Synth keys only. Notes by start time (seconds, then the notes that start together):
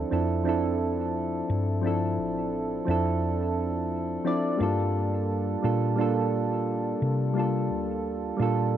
Already playing: F3 C4 D4 E4 A4
0.10 F3 C4 D4 E4 A4
0.43 F3 C4 D4
0.48 E4 A4
1.82 F3 C4 D4
1.86 E4 A4
2.85 F3 C4 D4
2.89 E4 A4
4.24 F3 C4 D4 E4 D5
4.57 G3 A#3 D4
4.61 F4 A4
5.62 G3 A#3 D4 F4 A4
5.96 G3 A#3 D4
6.00 F4 A4
7.34 G3 A#3 D4 F4
7.39 A4
8.37 G3 A#3 D4
8.41 F4 A4